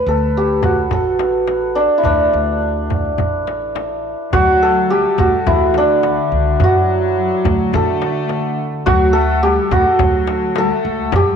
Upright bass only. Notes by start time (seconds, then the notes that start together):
0.07 D2
0.93 A1
2.05 D2
2.33 D2
3.18 A1
4.33 D2
5.19 D2
5.47 D2
6.32 C#2
6.61 F#2
7.45 D2
7.74 D3
8.87 D2
9.71 D2
10.00 D2
10.85 C#2
11.13 F#2